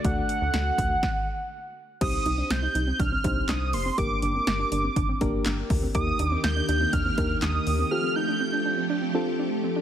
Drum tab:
CC |--------|x-------|--------|--------|
HH |xxxx----|xxxxxxxo|xxxxxxxo|xxxxxxxo|
CP |--------|------x-|------x-|------x-|
SD |--o-o---|--o---o-|--o---o-|--o---o-|
BD |o--oo---|o---oo--|o---oo-o|o---oo--|

CC |--------|
HH |--------|
CP |--------|
SD |--------|
BD |--------|